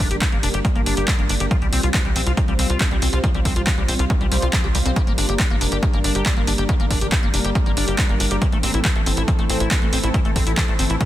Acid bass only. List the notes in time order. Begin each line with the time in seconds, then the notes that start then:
0.11 G4
0.22 G3
0.32 A#3
0.43 D4
0.54 G4
0.65 G3
0.75 A#3
0.86 D4
0.97 G4
1.08 G3
1.19 A#3
1.29 D4
1.40 G4
1.51 F3
1.62 G3
1.73 C4
1.83 F4
1.94 F3
2.05 G3
2.16 C4
2.27 F4
2.37 F3
2.48 G3
2.59 C4
2.70 F4
2.81 F3
2.91 G3
3.02 C4
3.13 F4
3.24 F3
3.34 G3
3.45 C4
3.56 F4
3.67 F3
3.78 G3
3.88 C4
3.99 F4
4.10 F3
4.21 G3
4.32 G3
4.42 F4
4.53 F3
4.64 G4
4.75 G3
4.85 C4
4.96 G3
5.07 A#3
5.18 D4
5.29 G4
5.39 G3
5.50 A#3
5.61 D4
5.72 G4
5.83 G3
5.93 A#3
6.04 D4
6.15 G4
6.26 G3
6.37 A#3
6.47 D4
6.58 G4
6.69 G3
6.80 A#3
6.91 D4
7.01 G4
7.12 G3
7.23 A#3
7.34 D4
7.45 G4
7.55 G3
7.66 A#3
7.77 D4
7.88 G4
7.99 G3
8.09 A#3
8.20 D4
8.31 G4
8.42 E3
8.52 A3
8.63 C4
8.74 E4
8.85 E3
8.96 A3
9.06 C4
9.17 E4
9.28 E3
9.39 A3
9.50 C4
9.60 E4
9.71 E3
9.82 A3
9.93 C4
10.03 E4
10.14 E3
10.25 A3
10.36 C4
10.47 E4
10.57 E3
10.68 A3
10.79 C4
10.90 E4
11.01 E3